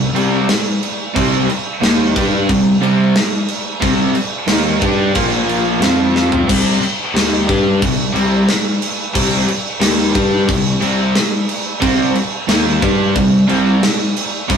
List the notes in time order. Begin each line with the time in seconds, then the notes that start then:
Already playing: C2
0.13 C2 C3 G3 C4, crash
0.49 snare, crash
0.83 crash
1.15 C2 C3 G3 C4, kick, crash
1.48 muted picked electric bass stroke, muted overdriven electric guitar stroke, muted distorted electric guitar stroke, crash
1.81 D#2 D#3 A#3 D#4, snare, crash
2.14 G2 G3 D4 G4, kick, crash
2.49 C2 C3 G3, kick, crash
2.81 C2 C3 G3 C4, crash
3.16 snare, crash
3.48 crash
3.82 C2 C3 G3 C4, kick, crash
4.14 muted picked electric bass stroke, muted distorted electric guitar stroke, muted overdriven electric guitar stroke, crash
4.47 D#2 D#3 A#3 D#4, snare, crash
4.81 G2 G3 D4 G4, kick, crash
5.15 A#1 A#2 F3 A#3, kick, crash
5.49 crash
5.80 F2 F3 C4 F4, snare, crash
6.16 snare
6.32 floor tom
6.47 C2 C3 G3 C4, kick, crash
6.81 muted distorted electric guitar stroke, muted picked electric bass stroke, muted overdriven electric guitar stroke, crash
7.14 D#2 D#3 A#3 D#4, snare, crash
7.49 G2 G3 D4 G4, kick, crash
7.81 C2 C3 G3, kick, crash
8.14 C2 C3 G3 C4, crash
8.48 snare, crash
8.82 crash
9.14 C2 C3 G3 C4, kick, crash
9.47 muted distorted electric guitar stroke, muted picked electric bass stroke, muted overdriven electric guitar stroke, crash
9.80 D#2 D#3 A#3 D#4, snare, crash
10.14 G2 G3 D4 G4, kick, crash
10.48 C2 C3 G3, kick, crash
10.81 C2 C3 G3 C4, crash
11.15 snare, crash
11.49 crash
11.82 C2 C3 G3 C4, kick, crash
12.15 muted picked electric bass stroke, muted distorted electric guitar stroke, muted overdriven electric guitar stroke, crash
12.48 D#2 D#3 A#3 D#4, snare, crash
12.82 G2 G3 D4 G4, kick, crash
13.15 C2 C3 G3, kick, crash
13.48 C2 C3 G3 C4, crash
13.83 snare, crash
14.17 crash
14.49 C2 C3 G3 C4, kick, crash